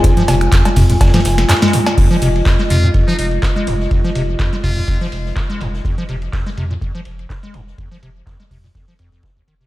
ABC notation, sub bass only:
X:1
M:4/4
L:1/8
Q:"Swing 16ths" 1/4=124
K:Fm
V:1 name="Sub bass" clef=bass
z F,,, z F,, z F,,, z2 | z F,,, z F,, z F,,, z F,,, | z F,,, z F,, z F,,, z F,,, | z F,,, z F,, z F,,, z F,,, |
z F,,, z F,, z F,,, z F,,, |]